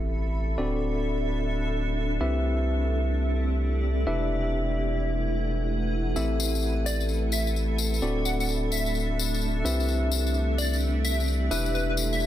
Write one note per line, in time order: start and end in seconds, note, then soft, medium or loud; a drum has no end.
0.00 0.56 A1 medium
0.00 12.26 A3 medium
0.00 0.56 C4 medium
0.00 0.56 E4 medium
0.00 0.56 G4 medium
0.00 0.56 A4 medium
0.00 2.97 A4 medium
0.00 12.26 A4 medium
0.00 0.56 E5 medium
0.00 2.97 E5 medium
0.00 1.22 B5 medium
0.00 impact medium
0.58 2.19 D1 medium
0.58 2.19 C4 medium
0.58 2.19 D4 medium
0.58 2.81 D4 medium
0.58 2.19 F#4 medium
0.58 2.19 A4 medium
0.58 2.19 D5 medium
2.21 4.05 C2 medium
2.21 4.07 C4 medium
2.21 4.05 C4 medium
2.21 4.05 E4 medium
2.21 4.05 G4 medium
2.21 4.05 B4 medium
2.21 4.05 E5 medium
2.55 4.93 G4 medium
3.06 4.93 D5 medium
4.07 6.14 E1 medium
4.07 6.14 D4 medium
4.07 6.92 E4 medium
4.07 6.14 E4 medium
4.07 6.14 G4 medium
4.07 6.14 B4 medium
4.07 6.14 E5 medium
4.71 6.92 B4 medium
4.87 6.83 F#5 medium
6.16 8.01 A1 medium
6.16 8.00 C4 medium
6.16 8.00 E4 medium
6.16 8.00 G4 medium
6.16 8.00 A4 medium
6.16 10.41 A4 medium
6.16 8.00 E5 medium
6.16 tambourine soft
6.36 10.41 E5 medium
6.40 tambourine medium
6.55 tambourine soft
6.63 tambourine soft
6.86 7.04 D5 medium
6.86 tambourine medium
7.00 8.69 B5 medium
7.00 tambourine soft
7.09 tambourine soft
7.32 7.50 E5 medium
7.32 tambourine medium
7.47 tambourine soft
7.56 tambourine soft
7.78 tambourine medium
7.94 tambourine soft
8.02 9.63 D1 medium
8.02 9.63 C4 medium
8.02 9.63 D4 medium
8.02 10.41 D4 medium
8.02 9.63 F#4 medium
8.02 9.63 A4 medium
8.02 9.63 D5 medium
8.02 tambourine soft
8.25 8.35 F#5 medium
8.25 tambourine medium
8.40 8.46 F#5 medium
8.40 tambourine soft
8.49 tambourine soft
8.72 9.18 E5 medium
8.72 tambourine medium
8.86 tambourine soft
8.95 tambourine soft
9.19 tambourine medium
9.34 tambourine soft
9.41 tambourine soft
9.65 11.49 C2 medium
9.65 11.49 C4 medium
9.65 11.51 C4 medium
9.65 11.49 E4 medium
9.65 11.49 G4 medium
9.65 11.49 B4 medium
9.65 11.49 E5 medium
9.65 tambourine medium
9.78 12.26 G4 medium
9.78 tambourine soft
9.88 tambourine soft
10.11 tambourine medium
10.27 tambourine soft
10.34 tambourine soft
10.51 12.21 D5 medium
10.58 10.76 D5 medium
10.58 tambourine medium
10.73 tambourine soft
10.80 tambourine soft
11.04 11.22 E5 medium
11.04 tambourine medium
11.20 tambourine soft
11.28 tambourine soft
11.51 12.26 E1 medium
11.51 12.26 D4 medium
11.51 12.26 E4 medium
11.51 12.26 G4 medium
11.51 12.26 B4 medium
11.51 11.73 B4 medium
11.51 12.26 E5 medium
11.51 tambourine medium
11.66 tambourine soft
11.74 11.84 B4 medium
11.74 12.26 F#5 medium
11.74 tambourine soft
11.89 11.95 B4 medium
11.96 12.26 B4 medium
11.96 tambourine medium
12.12 12.26 E5 medium
12.12 tambourine soft
12.20 tambourine soft